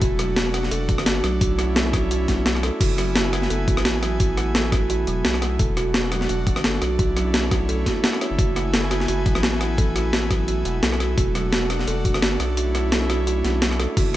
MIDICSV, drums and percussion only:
0, 0, Header, 1, 2, 480
1, 0, Start_track
1, 0, Key_signature, 3, "minor"
1, 0, Tempo, 348837
1, 21, Time_signature, 4, 2, 24, 8
1, 19494, End_track
2, 0, Start_track
2, 0, Title_t, "Drums"
2, 21, Note_on_c, 9, 36, 114
2, 21, Note_on_c, 9, 42, 97
2, 158, Note_off_c, 9, 42, 0
2, 159, Note_off_c, 9, 36, 0
2, 262, Note_on_c, 9, 37, 36
2, 262, Note_on_c, 9, 42, 72
2, 399, Note_off_c, 9, 37, 0
2, 399, Note_off_c, 9, 42, 0
2, 502, Note_on_c, 9, 38, 115
2, 502, Note_on_c, 9, 42, 93
2, 640, Note_off_c, 9, 38, 0
2, 640, Note_off_c, 9, 42, 0
2, 743, Note_on_c, 9, 37, 46
2, 743, Note_on_c, 9, 42, 67
2, 872, Note_on_c, 9, 38, 34
2, 881, Note_off_c, 9, 37, 0
2, 881, Note_off_c, 9, 42, 0
2, 983, Note_on_c, 9, 42, 94
2, 1010, Note_off_c, 9, 38, 0
2, 1121, Note_off_c, 9, 42, 0
2, 1222, Note_on_c, 9, 36, 105
2, 1222, Note_on_c, 9, 42, 71
2, 1352, Note_on_c, 9, 37, 54
2, 1359, Note_off_c, 9, 36, 0
2, 1359, Note_off_c, 9, 42, 0
2, 1462, Note_on_c, 9, 38, 115
2, 1462, Note_on_c, 9, 42, 95
2, 1490, Note_off_c, 9, 37, 0
2, 1600, Note_off_c, 9, 38, 0
2, 1600, Note_off_c, 9, 42, 0
2, 1704, Note_on_c, 9, 37, 47
2, 1704, Note_on_c, 9, 42, 67
2, 1841, Note_off_c, 9, 37, 0
2, 1841, Note_off_c, 9, 42, 0
2, 1941, Note_on_c, 9, 36, 121
2, 1943, Note_on_c, 9, 42, 99
2, 2079, Note_off_c, 9, 36, 0
2, 2080, Note_off_c, 9, 42, 0
2, 2183, Note_on_c, 9, 37, 37
2, 2183, Note_on_c, 9, 42, 73
2, 2320, Note_off_c, 9, 37, 0
2, 2320, Note_off_c, 9, 42, 0
2, 2423, Note_on_c, 9, 38, 117
2, 2423, Note_on_c, 9, 42, 94
2, 2561, Note_off_c, 9, 38, 0
2, 2561, Note_off_c, 9, 42, 0
2, 2661, Note_on_c, 9, 36, 105
2, 2664, Note_on_c, 9, 37, 49
2, 2664, Note_on_c, 9, 42, 68
2, 2798, Note_off_c, 9, 36, 0
2, 2802, Note_off_c, 9, 37, 0
2, 2802, Note_off_c, 9, 42, 0
2, 2902, Note_on_c, 9, 42, 98
2, 3040, Note_off_c, 9, 42, 0
2, 3141, Note_on_c, 9, 36, 58
2, 3141, Note_on_c, 9, 38, 37
2, 3141, Note_on_c, 9, 42, 71
2, 3278, Note_off_c, 9, 36, 0
2, 3279, Note_off_c, 9, 38, 0
2, 3279, Note_off_c, 9, 42, 0
2, 3382, Note_on_c, 9, 38, 114
2, 3382, Note_on_c, 9, 42, 97
2, 3512, Note_on_c, 9, 37, 36
2, 3520, Note_off_c, 9, 38, 0
2, 3520, Note_off_c, 9, 42, 0
2, 3623, Note_off_c, 9, 37, 0
2, 3623, Note_on_c, 9, 37, 48
2, 3623, Note_on_c, 9, 42, 68
2, 3760, Note_off_c, 9, 37, 0
2, 3760, Note_off_c, 9, 42, 0
2, 3861, Note_on_c, 9, 36, 123
2, 3863, Note_on_c, 9, 42, 97
2, 3863, Note_on_c, 9, 49, 106
2, 3998, Note_off_c, 9, 36, 0
2, 4001, Note_off_c, 9, 42, 0
2, 4001, Note_off_c, 9, 49, 0
2, 4104, Note_on_c, 9, 37, 39
2, 4104, Note_on_c, 9, 42, 74
2, 4241, Note_off_c, 9, 37, 0
2, 4241, Note_off_c, 9, 42, 0
2, 4342, Note_on_c, 9, 38, 124
2, 4342, Note_on_c, 9, 42, 99
2, 4479, Note_off_c, 9, 38, 0
2, 4479, Note_off_c, 9, 42, 0
2, 4582, Note_on_c, 9, 37, 49
2, 4582, Note_on_c, 9, 42, 68
2, 4710, Note_on_c, 9, 38, 37
2, 4720, Note_off_c, 9, 37, 0
2, 4720, Note_off_c, 9, 42, 0
2, 4820, Note_on_c, 9, 42, 95
2, 4848, Note_off_c, 9, 38, 0
2, 4958, Note_off_c, 9, 42, 0
2, 5060, Note_on_c, 9, 36, 107
2, 5061, Note_on_c, 9, 42, 70
2, 5191, Note_on_c, 9, 37, 57
2, 5198, Note_off_c, 9, 36, 0
2, 5199, Note_off_c, 9, 42, 0
2, 5299, Note_on_c, 9, 38, 122
2, 5299, Note_on_c, 9, 42, 100
2, 5329, Note_off_c, 9, 37, 0
2, 5436, Note_off_c, 9, 38, 0
2, 5436, Note_off_c, 9, 42, 0
2, 5540, Note_on_c, 9, 37, 49
2, 5540, Note_on_c, 9, 42, 68
2, 5678, Note_off_c, 9, 37, 0
2, 5678, Note_off_c, 9, 42, 0
2, 5779, Note_on_c, 9, 36, 127
2, 5779, Note_on_c, 9, 42, 95
2, 5916, Note_off_c, 9, 42, 0
2, 5917, Note_off_c, 9, 36, 0
2, 6019, Note_on_c, 9, 37, 39
2, 6019, Note_on_c, 9, 42, 71
2, 6157, Note_off_c, 9, 37, 0
2, 6157, Note_off_c, 9, 42, 0
2, 6259, Note_on_c, 9, 38, 123
2, 6259, Note_on_c, 9, 42, 93
2, 6397, Note_off_c, 9, 38, 0
2, 6397, Note_off_c, 9, 42, 0
2, 6499, Note_on_c, 9, 36, 116
2, 6500, Note_on_c, 9, 37, 52
2, 6500, Note_on_c, 9, 42, 68
2, 6636, Note_off_c, 9, 36, 0
2, 6637, Note_off_c, 9, 37, 0
2, 6637, Note_off_c, 9, 42, 0
2, 6739, Note_on_c, 9, 42, 93
2, 6876, Note_off_c, 9, 42, 0
2, 6980, Note_on_c, 9, 42, 69
2, 7118, Note_off_c, 9, 42, 0
2, 7220, Note_on_c, 9, 38, 125
2, 7220, Note_on_c, 9, 42, 96
2, 7349, Note_on_c, 9, 37, 39
2, 7358, Note_off_c, 9, 38, 0
2, 7358, Note_off_c, 9, 42, 0
2, 7458, Note_off_c, 9, 37, 0
2, 7458, Note_on_c, 9, 37, 49
2, 7458, Note_on_c, 9, 42, 64
2, 7596, Note_off_c, 9, 37, 0
2, 7596, Note_off_c, 9, 42, 0
2, 7697, Note_on_c, 9, 42, 91
2, 7698, Note_on_c, 9, 36, 127
2, 7835, Note_off_c, 9, 42, 0
2, 7836, Note_off_c, 9, 36, 0
2, 7938, Note_on_c, 9, 37, 38
2, 7938, Note_on_c, 9, 42, 68
2, 8076, Note_off_c, 9, 37, 0
2, 8076, Note_off_c, 9, 42, 0
2, 8177, Note_on_c, 9, 38, 127
2, 8177, Note_on_c, 9, 42, 90
2, 8315, Note_off_c, 9, 38, 0
2, 8315, Note_off_c, 9, 42, 0
2, 8417, Note_on_c, 9, 37, 48
2, 8417, Note_on_c, 9, 42, 65
2, 8546, Note_on_c, 9, 38, 40
2, 8555, Note_off_c, 9, 37, 0
2, 8555, Note_off_c, 9, 42, 0
2, 8658, Note_on_c, 9, 42, 86
2, 8683, Note_off_c, 9, 38, 0
2, 8795, Note_off_c, 9, 42, 0
2, 8898, Note_on_c, 9, 42, 66
2, 8899, Note_on_c, 9, 36, 113
2, 9028, Note_on_c, 9, 37, 55
2, 9036, Note_off_c, 9, 36, 0
2, 9036, Note_off_c, 9, 42, 0
2, 9140, Note_on_c, 9, 38, 125
2, 9140, Note_on_c, 9, 42, 93
2, 9166, Note_off_c, 9, 37, 0
2, 9277, Note_off_c, 9, 38, 0
2, 9277, Note_off_c, 9, 42, 0
2, 9380, Note_on_c, 9, 37, 46
2, 9380, Note_on_c, 9, 42, 63
2, 9517, Note_off_c, 9, 37, 0
2, 9517, Note_off_c, 9, 42, 0
2, 9619, Note_on_c, 9, 36, 123
2, 9619, Note_on_c, 9, 42, 90
2, 9756, Note_off_c, 9, 36, 0
2, 9756, Note_off_c, 9, 42, 0
2, 9860, Note_on_c, 9, 37, 38
2, 9860, Note_on_c, 9, 42, 64
2, 9997, Note_off_c, 9, 37, 0
2, 9997, Note_off_c, 9, 42, 0
2, 10099, Note_on_c, 9, 38, 127
2, 10099, Note_on_c, 9, 42, 91
2, 10237, Note_off_c, 9, 38, 0
2, 10237, Note_off_c, 9, 42, 0
2, 10339, Note_on_c, 9, 37, 46
2, 10339, Note_on_c, 9, 42, 64
2, 10340, Note_on_c, 9, 36, 112
2, 10477, Note_off_c, 9, 36, 0
2, 10477, Note_off_c, 9, 37, 0
2, 10477, Note_off_c, 9, 42, 0
2, 10580, Note_on_c, 9, 42, 85
2, 10718, Note_off_c, 9, 42, 0
2, 10819, Note_on_c, 9, 36, 65
2, 10822, Note_on_c, 9, 38, 39
2, 10822, Note_on_c, 9, 42, 66
2, 10957, Note_off_c, 9, 36, 0
2, 10960, Note_off_c, 9, 38, 0
2, 10960, Note_off_c, 9, 42, 0
2, 11060, Note_on_c, 9, 38, 123
2, 11060, Note_on_c, 9, 42, 92
2, 11190, Note_on_c, 9, 37, 36
2, 11197, Note_off_c, 9, 38, 0
2, 11197, Note_off_c, 9, 42, 0
2, 11302, Note_off_c, 9, 37, 0
2, 11302, Note_on_c, 9, 37, 47
2, 11302, Note_on_c, 9, 42, 60
2, 11439, Note_off_c, 9, 37, 0
2, 11439, Note_off_c, 9, 42, 0
2, 11539, Note_on_c, 9, 36, 124
2, 11542, Note_on_c, 9, 42, 89
2, 11677, Note_off_c, 9, 36, 0
2, 11679, Note_off_c, 9, 42, 0
2, 11782, Note_on_c, 9, 37, 37
2, 11782, Note_on_c, 9, 42, 67
2, 11919, Note_off_c, 9, 37, 0
2, 11919, Note_off_c, 9, 42, 0
2, 12021, Note_on_c, 9, 38, 123
2, 12021, Note_on_c, 9, 42, 92
2, 12158, Note_off_c, 9, 38, 0
2, 12158, Note_off_c, 9, 42, 0
2, 12260, Note_on_c, 9, 37, 44
2, 12260, Note_on_c, 9, 42, 62
2, 12389, Note_on_c, 9, 38, 37
2, 12397, Note_off_c, 9, 37, 0
2, 12397, Note_off_c, 9, 42, 0
2, 12499, Note_on_c, 9, 42, 86
2, 12527, Note_off_c, 9, 38, 0
2, 12636, Note_off_c, 9, 42, 0
2, 12740, Note_on_c, 9, 36, 106
2, 12740, Note_on_c, 9, 42, 68
2, 12869, Note_on_c, 9, 37, 51
2, 12877, Note_off_c, 9, 36, 0
2, 12877, Note_off_c, 9, 42, 0
2, 12980, Note_on_c, 9, 38, 120
2, 12980, Note_on_c, 9, 42, 91
2, 13007, Note_off_c, 9, 37, 0
2, 13117, Note_off_c, 9, 38, 0
2, 13117, Note_off_c, 9, 42, 0
2, 13220, Note_on_c, 9, 37, 47
2, 13220, Note_on_c, 9, 42, 60
2, 13358, Note_off_c, 9, 37, 0
2, 13358, Note_off_c, 9, 42, 0
2, 13459, Note_on_c, 9, 36, 121
2, 13461, Note_on_c, 9, 42, 94
2, 13597, Note_off_c, 9, 36, 0
2, 13598, Note_off_c, 9, 42, 0
2, 13701, Note_on_c, 9, 37, 35
2, 13701, Note_on_c, 9, 42, 67
2, 13839, Note_off_c, 9, 37, 0
2, 13839, Note_off_c, 9, 42, 0
2, 13941, Note_on_c, 9, 38, 119
2, 13941, Note_on_c, 9, 42, 93
2, 14078, Note_off_c, 9, 38, 0
2, 14078, Note_off_c, 9, 42, 0
2, 14179, Note_on_c, 9, 36, 104
2, 14181, Note_on_c, 9, 37, 46
2, 14181, Note_on_c, 9, 42, 66
2, 14317, Note_off_c, 9, 36, 0
2, 14318, Note_off_c, 9, 37, 0
2, 14318, Note_off_c, 9, 42, 0
2, 14420, Note_on_c, 9, 42, 87
2, 14557, Note_off_c, 9, 42, 0
2, 14658, Note_on_c, 9, 42, 68
2, 14796, Note_off_c, 9, 42, 0
2, 14899, Note_on_c, 9, 38, 115
2, 14899, Note_on_c, 9, 42, 90
2, 15031, Note_on_c, 9, 37, 35
2, 15037, Note_off_c, 9, 38, 0
2, 15037, Note_off_c, 9, 42, 0
2, 15140, Note_off_c, 9, 37, 0
2, 15140, Note_on_c, 9, 37, 43
2, 15140, Note_on_c, 9, 42, 64
2, 15278, Note_off_c, 9, 37, 0
2, 15278, Note_off_c, 9, 42, 0
2, 15378, Note_on_c, 9, 36, 119
2, 15380, Note_on_c, 9, 42, 96
2, 15516, Note_off_c, 9, 36, 0
2, 15517, Note_off_c, 9, 42, 0
2, 15620, Note_on_c, 9, 37, 37
2, 15620, Note_on_c, 9, 42, 71
2, 15757, Note_off_c, 9, 37, 0
2, 15757, Note_off_c, 9, 42, 0
2, 15859, Note_on_c, 9, 38, 117
2, 15859, Note_on_c, 9, 42, 97
2, 15997, Note_off_c, 9, 38, 0
2, 15997, Note_off_c, 9, 42, 0
2, 16099, Note_on_c, 9, 37, 47
2, 16099, Note_on_c, 9, 42, 68
2, 16230, Note_on_c, 9, 38, 35
2, 16237, Note_off_c, 9, 37, 0
2, 16237, Note_off_c, 9, 42, 0
2, 16340, Note_on_c, 9, 42, 93
2, 16368, Note_off_c, 9, 38, 0
2, 16477, Note_off_c, 9, 42, 0
2, 16579, Note_on_c, 9, 36, 98
2, 16581, Note_on_c, 9, 42, 71
2, 16710, Note_on_c, 9, 37, 55
2, 16716, Note_off_c, 9, 36, 0
2, 16719, Note_off_c, 9, 42, 0
2, 16821, Note_on_c, 9, 38, 112
2, 16821, Note_on_c, 9, 42, 93
2, 16848, Note_off_c, 9, 37, 0
2, 16959, Note_off_c, 9, 38, 0
2, 16959, Note_off_c, 9, 42, 0
2, 17061, Note_on_c, 9, 37, 44
2, 17061, Note_on_c, 9, 42, 65
2, 17199, Note_off_c, 9, 37, 0
2, 17199, Note_off_c, 9, 42, 0
2, 17300, Note_on_c, 9, 42, 95
2, 17438, Note_off_c, 9, 42, 0
2, 17541, Note_on_c, 9, 37, 36
2, 17541, Note_on_c, 9, 42, 74
2, 17678, Note_off_c, 9, 37, 0
2, 17678, Note_off_c, 9, 42, 0
2, 17780, Note_on_c, 9, 38, 113
2, 17780, Note_on_c, 9, 42, 96
2, 17917, Note_off_c, 9, 38, 0
2, 17917, Note_off_c, 9, 42, 0
2, 18021, Note_on_c, 9, 37, 47
2, 18021, Note_on_c, 9, 42, 67
2, 18159, Note_off_c, 9, 37, 0
2, 18159, Note_off_c, 9, 42, 0
2, 18261, Note_on_c, 9, 42, 94
2, 18398, Note_off_c, 9, 42, 0
2, 18500, Note_on_c, 9, 38, 37
2, 18500, Note_on_c, 9, 42, 71
2, 18638, Note_off_c, 9, 38, 0
2, 18638, Note_off_c, 9, 42, 0
2, 18740, Note_on_c, 9, 38, 115
2, 18740, Note_on_c, 9, 42, 101
2, 18870, Note_on_c, 9, 37, 38
2, 18878, Note_off_c, 9, 38, 0
2, 18878, Note_off_c, 9, 42, 0
2, 18982, Note_off_c, 9, 37, 0
2, 18982, Note_on_c, 9, 37, 48
2, 18982, Note_on_c, 9, 42, 66
2, 19120, Note_off_c, 9, 37, 0
2, 19120, Note_off_c, 9, 42, 0
2, 19222, Note_on_c, 9, 36, 126
2, 19222, Note_on_c, 9, 42, 98
2, 19222, Note_on_c, 9, 49, 79
2, 19360, Note_off_c, 9, 36, 0
2, 19360, Note_off_c, 9, 42, 0
2, 19360, Note_off_c, 9, 49, 0
2, 19494, End_track
0, 0, End_of_file